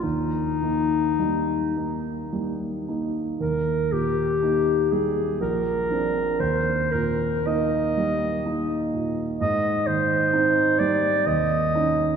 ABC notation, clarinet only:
X:1
M:3/4
L:1/8
Q:1/4=60
K:Eb
V:1 name="Clarinet"
E4 z2 | B G2 A B2 | c B e3 z | e c2 d e2 |]